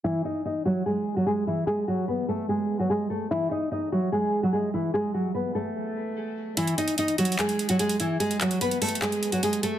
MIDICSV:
0, 0, Header, 1, 3, 480
1, 0, Start_track
1, 0, Tempo, 408163
1, 48, Time_signature, 4, 2, 24, 8
1, 11510, End_track
2, 0, Start_track
2, 0, Title_t, "Nylon-string guitar"
2, 0, Program_c, 0, 24
2, 50, Note_on_c, 0, 64, 107
2, 60, Note_on_c, 0, 52, 77
2, 238, Note_off_c, 0, 64, 0
2, 244, Note_off_c, 0, 52, 0
2, 290, Note_on_c, 0, 63, 70
2, 299, Note_on_c, 0, 75, 57
2, 478, Note_off_c, 0, 63, 0
2, 484, Note_off_c, 0, 75, 0
2, 532, Note_on_c, 0, 63, 74
2, 542, Note_on_c, 0, 75, 61
2, 720, Note_off_c, 0, 63, 0
2, 726, Note_off_c, 0, 75, 0
2, 768, Note_on_c, 0, 66, 74
2, 778, Note_on_c, 0, 54, 60
2, 957, Note_off_c, 0, 66, 0
2, 963, Note_off_c, 0, 54, 0
2, 1010, Note_on_c, 0, 68, 76
2, 1020, Note_on_c, 0, 56, 55
2, 1348, Note_off_c, 0, 68, 0
2, 1353, Note_off_c, 0, 56, 0
2, 1369, Note_on_c, 0, 66, 73
2, 1379, Note_on_c, 0, 54, 60
2, 1463, Note_off_c, 0, 66, 0
2, 1469, Note_off_c, 0, 54, 0
2, 1486, Note_on_c, 0, 68, 82
2, 1495, Note_on_c, 0, 56, 66
2, 1676, Note_off_c, 0, 68, 0
2, 1681, Note_off_c, 0, 56, 0
2, 1730, Note_on_c, 0, 64, 76
2, 1740, Note_on_c, 0, 52, 64
2, 1918, Note_off_c, 0, 64, 0
2, 1924, Note_off_c, 0, 52, 0
2, 1963, Note_on_c, 0, 68, 103
2, 1971, Note_on_c, 0, 56, 72
2, 2154, Note_off_c, 0, 68, 0
2, 2159, Note_off_c, 0, 56, 0
2, 2208, Note_on_c, 0, 66, 71
2, 2219, Note_on_c, 0, 54, 59
2, 2397, Note_off_c, 0, 66, 0
2, 2404, Note_off_c, 0, 54, 0
2, 2445, Note_on_c, 0, 71, 77
2, 2455, Note_on_c, 0, 59, 63
2, 2636, Note_off_c, 0, 71, 0
2, 2642, Note_off_c, 0, 59, 0
2, 2687, Note_on_c, 0, 69, 81
2, 2697, Note_on_c, 0, 57, 65
2, 2876, Note_off_c, 0, 69, 0
2, 2882, Note_off_c, 0, 57, 0
2, 2926, Note_on_c, 0, 68, 78
2, 2936, Note_on_c, 0, 56, 63
2, 3266, Note_off_c, 0, 68, 0
2, 3271, Note_off_c, 0, 56, 0
2, 3285, Note_on_c, 0, 66, 64
2, 3296, Note_on_c, 0, 54, 55
2, 3381, Note_off_c, 0, 66, 0
2, 3387, Note_off_c, 0, 54, 0
2, 3406, Note_on_c, 0, 68, 83
2, 3415, Note_on_c, 0, 56, 67
2, 3596, Note_off_c, 0, 68, 0
2, 3601, Note_off_c, 0, 56, 0
2, 3645, Note_on_c, 0, 69, 79
2, 3655, Note_on_c, 0, 57, 61
2, 3835, Note_off_c, 0, 69, 0
2, 3841, Note_off_c, 0, 57, 0
2, 3892, Note_on_c, 0, 64, 106
2, 3901, Note_on_c, 0, 52, 85
2, 4080, Note_off_c, 0, 64, 0
2, 4085, Note_off_c, 0, 52, 0
2, 4126, Note_on_c, 0, 63, 76
2, 4135, Note_on_c, 0, 75, 56
2, 4316, Note_off_c, 0, 63, 0
2, 4321, Note_off_c, 0, 75, 0
2, 4368, Note_on_c, 0, 63, 79
2, 4378, Note_on_c, 0, 75, 70
2, 4557, Note_off_c, 0, 63, 0
2, 4563, Note_off_c, 0, 75, 0
2, 4612, Note_on_c, 0, 66, 77
2, 4620, Note_on_c, 0, 54, 62
2, 4799, Note_off_c, 0, 66, 0
2, 4804, Note_off_c, 0, 54, 0
2, 4847, Note_on_c, 0, 68, 83
2, 4856, Note_on_c, 0, 56, 60
2, 5186, Note_off_c, 0, 68, 0
2, 5191, Note_off_c, 0, 56, 0
2, 5211, Note_on_c, 0, 66, 78
2, 5220, Note_on_c, 0, 54, 69
2, 5304, Note_off_c, 0, 66, 0
2, 5310, Note_off_c, 0, 54, 0
2, 5325, Note_on_c, 0, 68, 80
2, 5335, Note_on_c, 0, 56, 61
2, 5515, Note_off_c, 0, 68, 0
2, 5521, Note_off_c, 0, 56, 0
2, 5571, Note_on_c, 0, 64, 75
2, 5580, Note_on_c, 0, 52, 63
2, 5759, Note_off_c, 0, 64, 0
2, 5764, Note_off_c, 0, 52, 0
2, 5807, Note_on_c, 0, 68, 107
2, 5816, Note_on_c, 0, 56, 79
2, 5996, Note_off_c, 0, 68, 0
2, 6002, Note_off_c, 0, 56, 0
2, 6047, Note_on_c, 0, 66, 77
2, 6055, Note_on_c, 0, 54, 63
2, 6236, Note_off_c, 0, 66, 0
2, 6241, Note_off_c, 0, 54, 0
2, 6285, Note_on_c, 0, 71, 68
2, 6294, Note_on_c, 0, 59, 60
2, 6475, Note_off_c, 0, 71, 0
2, 6481, Note_off_c, 0, 59, 0
2, 6526, Note_on_c, 0, 69, 85
2, 6536, Note_on_c, 0, 57, 69
2, 7680, Note_off_c, 0, 69, 0
2, 7685, Note_off_c, 0, 57, 0
2, 7728, Note_on_c, 0, 64, 106
2, 7736, Note_on_c, 0, 52, 78
2, 7917, Note_off_c, 0, 64, 0
2, 7922, Note_off_c, 0, 52, 0
2, 7970, Note_on_c, 0, 63, 75
2, 7980, Note_on_c, 0, 75, 58
2, 8158, Note_off_c, 0, 63, 0
2, 8164, Note_off_c, 0, 75, 0
2, 8213, Note_on_c, 0, 63, 79
2, 8222, Note_on_c, 0, 75, 62
2, 8400, Note_off_c, 0, 63, 0
2, 8405, Note_off_c, 0, 75, 0
2, 8447, Note_on_c, 0, 66, 80
2, 8456, Note_on_c, 0, 54, 62
2, 8637, Note_off_c, 0, 66, 0
2, 8642, Note_off_c, 0, 54, 0
2, 8689, Note_on_c, 0, 68, 77
2, 8700, Note_on_c, 0, 56, 59
2, 9027, Note_off_c, 0, 68, 0
2, 9033, Note_off_c, 0, 56, 0
2, 9049, Note_on_c, 0, 66, 79
2, 9059, Note_on_c, 0, 54, 62
2, 9143, Note_off_c, 0, 66, 0
2, 9149, Note_off_c, 0, 54, 0
2, 9166, Note_on_c, 0, 68, 86
2, 9176, Note_on_c, 0, 56, 68
2, 9355, Note_off_c, 0, 68, 0
2, 9362, Note_off_c, 0, 56, 0
2, 9409, Note_on_c, 0, 64, 82
2, 9418, Note_on_c, 0, 52, 64
2, 9598, Note_off_c, 0, 64, 0
2, 9603, Note_off_c, 0, 52, 0
2, 9643, Note_on_c, 0, 68, 108
2, 9653, Note_on_c, 0, 56, 75
2, 9834, Note_off_c, 0, 68, 0
2, 9840, Note_off_c, 0, 56, 0
2, 9891, Note_on_c, 0, 66, 71
2, 9900, Note_on_c, 0, 54, 59
2, 10079, Note_off_c, 0, 66, 0
2, 10084, Note_off_c, 0, 54, 0
2, 10127, Note_on_c, 0, 71, 83
2, 10137, Note_on_c, 0, 59, 64
2, 10317, Note_off_c, 0, 71, 0
2, 10322, Note_off_c, 0, 59, 0
2, 10369, Note_on_c, 0, 69, 82
2, 10379, Note_on_c, 0, 57, 68
2, 10558, Note_off_c, 0, 69, 0
2, 10564, Note_off_c, 0, 57, 0
2, 10606, Note_on_c, 0, 68, 79
2, 10616, Note_on_c, 0, 56, 63
2, 10946, Note_off_c, 0, 68, 0
2, 10951, Note_off_c, 0, 56, 0
2, 10966, Note_on_c, 0, 66, 64
2, 10977, Note_on_c, 0, 54, 57
2, 11061, Note_off_c, 0, 66, 0
2, 11068, Note_off_c, 0, 54, 0
2, 11091, Note_on_c, 0, 68, 84
2, 11099, Note_on_c, 0, 56, 69
2, 11279, Note_off_c, 0, 68, 0
2, 11284, Note_off_c, 0, 56, 0
2, 11325, Note_on_c, 0, 69, 80
2, 11335, Note_on_c, 0, 57, 63
2, 11510, Note_off_c, 0, 57, 0
2, 11510, Note_off_c, 0, 69, 0
2, 11510, End_track
3, 0, Start_track
3, 0, Title_t, "Drums"
3, 7727, Note_on_c, 9, 42, 90
3, 7845, Note_off_c, 9, 42, 0
3, 7849, Note_on_c, 9, 42, 55
3, 7967, Note_off_c, 9, 42, 0
3, 7973, Note_on_c, 9, 42, 85
3, 8086, Note_off_c, 9, 42, 0
3, 8086, Note_on_c, 9, 42, 53
3, 8204, Note_off_c, 9, 42, 0
3, 8206, Note_on_c, 9, 42, 76
3, 8324, Note_off_c, 9, 42, 0
3, 8328, Note_on_c, 9, 42, 51
3, 8446, Note_off_c, 9, 42, 0
3, 8447, Note_on_c, 9, 42, 61
3, 8528, Note_off_c, 9, 42, 0
3, 8528, Note_on_c, 9, 42, 60
3, 8607, Note_off_c, 9, 42, 0
3, 8607, Note_on_c, 9, 42, 58
3, 8687, Note_on_c, 9, 39, 123
3, 8688, Note_off_c, 9, 42, 0
3, 8688, Note_on_c, 9, 42, 90
3, 8805, Note_off_c, 9, 39, 0
3, 8806, Note_off_c, 9, 42, 0
3, 8806, Note_on_c, 9, 42, 56
3, 8924, Note_off_c, 9, 42, 0
3, 8929, Note_on_c, 9, 42, 61
3, 9041, Note_off_c, 9, 42, 0
3, 9041, Note_on_c, 9, 42, 85
3, 9159, Note_off_c, 9, 42, 0
3, 9166, Note_on_c, 9, 42, 86
3, 9283, Note_off_c, 9, 42, 0
3, 9284, Note_on_c, 9, 42, 57
3, 9401, Note_off_c, 9, 42, 0
3, 9404, Note_on_c, 9, 42, 72
3, 9522, Note_off_c, 9, 42, 0
3, 9647, Note_on_c, 9, 42, 94
3, 9764, Note_off_c, 9, 42, 0
3, 9770, Note_on_c, 9, 42, 55
3, 9887, Note_off_c, 9, 42, 0
3, 9888, Note_on_c, 9, 39, 94
3, 9893, Note_on_c, 9, 42, 87
3, 10005, Note_off_c, 9, 42, 0
3, 10005, Note_on_c, 9, 42, 53
3, 10006, Note_off_c, 9, 39, 0
3, 10123, Note_off_c, 9, 42, 0
3, 10127, Note_on_c, 9, 42, 75
3, 10244, Note_off_c, 9, 42, 0
3, 10248, Note_on_c, 9, 42, 50
3, 10365, Note_off_c, 9, 42, 0
3, 10368, Note_on_c, 9, 42, 60
3, 10371, Note_on_c, 9, 46, 76
3, 10449, Note_off_c, 9, 42, 0
3, 10449, Note_on_c, 9, 42, 61
3, 10489, Note_off_c, 9, 46, 0
3, 10529, Note_off_c, 9, 42, 0
3, 10529, Note_on_c, 9, 42, 60
3, 10608, Note_on_c, 9, 39, 117
3, 10609, Note_off_c, 9, 42, 0
3, 10609, Note_on_c, 9, 42, 85
3, 10726, Note_off_c, 9, 39, 0
3, 10727, Note_off_c, 9, 42, 0
3, 10728, Note_on_c, 9, 42, 56
3, 10846, Note_off_c, 9, 42, 0
3, 10850, Note_on_c, 9, 42, 62
3, 10964, Note_off_c, 9, 42, 0
3, 10964, Note_on_c, 9, 42, 80
3, 11082, Note_off_c, 9, 42, 0
3, 11089, Note_on_c, 9, 42, 86
3, 11206, Note_off_c, 9, 42, 0
3, 11206, Note_on_c, 9, 42, 58
3, 11324, Note_off_c, 9, 42, 0
3, 11327, Note_on_c, 9, 42, 71
3, 11444, Note_off_c, 9, 42, 0
3, 11510, End_track
0, 0, End_of_file